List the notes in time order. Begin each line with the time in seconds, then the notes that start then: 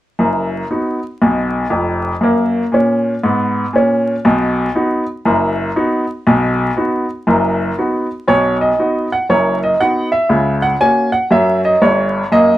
0.19 F#1 F#2
0.71 B3 D#4 F#4
1.22 B1 B2
1.70 F1 F2
2.21 F#2 A#3
2.72 A#2 C#4
3.23 G#2 B3
3.73 A#2 C#4
4.25 B1 B2
4.75 B3 D#4 F#4
5.25 F#1 F#2
5.76 B3 D#4 F#4
6.27 B1 B2
6.77 B3 D#4 F#4
7.27 F#1 F#2
7.78 B3 D#4 F#4
8.28 B1 B2 C#5
8.61 D#5
8.79 B3 D#4 F#4
9.12 F#5
9.29 F#1 F#2 C#5
9.63 D#5
9.80 B3 D#4 F#4 F#5
10.12 E5
10.29 C#2 C#3
10.62 F#5
10.80 A#3 C#4 F#4 G#5
11.12 F#5
11.31 F#2 F#3 E5
11.65 D#5
11.82 G1 G2 C#5
12.32 F#2 A#3 D#5